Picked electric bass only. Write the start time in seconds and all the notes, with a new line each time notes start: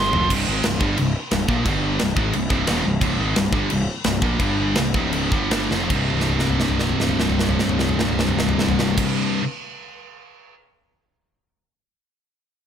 Already playing: G1
0.14 F1
0.30 C1
0.48 G#1
0.64 C1
0.81 G1
0.99 C1
1.32 C1
1.48 A#1
1.66 G1
2.01 C1
2.17 G#1
2.35 C1
2.50 C1
2.68 D#1
2.86 C1
3.02 C1
3.20 G#1
3.36 C1
3.53 G1
3.71 C1
4.06 C1
4.22 A#1
4.40 G1
4.77 C1
4.95 C#1
5.32 G1
5.71 F1
5.91 C1